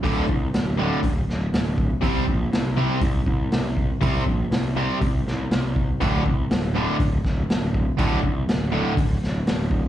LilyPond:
<<
  \new Staff \with { instrumentName = "Distorted electric guitar" } { \clef bass \time 4/4 \key c \mixolydian \tempo 4 = 121 <d, a, d>8 r4 <d, a, d>8 r2 | <c g c'>8 r4 <c g c'>8 r2 | <c g c'>8 r4 <c g c'>8 r2 | <d, a, d>8 r4 <d, a, d>8 r2 |
<d, a, d>8 r4 <d, a, d>8 r2 | }
  \new Staff \with { instrumentName = "Distorted electric guitar" } { \clef bass \time 4/4 \key c \mixolydian <d, a, d>8 r4 <d, a, d>8 r2 | <c g c'>8 r4 <c g c'>8 r2 | <c g c'>8 r4 <c g c'>8 r2 | <d, a, d>8 r4 <d, a, d>8 r2 |
<d, a, d>8 r4 <d, a, d>8 r2 | }
  \new Staff \with { instrumentName = "Picked electric bass" } { \clef bass \time 4/4 \key c \mixolydian d,,8 c,8 d,,4 d,,8 d,,8 d,,4 | c,8 bes,,8 c,4 c,8 c,8 c,4 | c,8 bes,,8 c,4 c,8 c,8 c,4 | d,,8 c,8 d,,4 d,,8 d,,8 d,,4 |
d,,8 c,8 d,,4 d,,8 d,,8 d,,4 | }
  \new DrumStaff \with { instrumentName = "Drums" } \drummode { \time 4/4 <hho bd>8 bd8 <hho sn>4 <hho bd>8 sn8 <hho sn>8 bd8 | <hho bd>8 bd8 <hho sn>4 <hho bd>8 bd8 <hho sn>8 bd8 | <hho bd>8 bd8 <hho sn>4 <hho bd>8 sn8 <hho sn>8 bd8 | <hho bd>8 bd8 <hho sn>4 <hho bd>8 <bd sn>8 <hho sn>8 bd8 |
<hho bd>8 bd8 <hho sn>4 <hho bd>8 sn8 <hho sn>8 bd8 | }
>>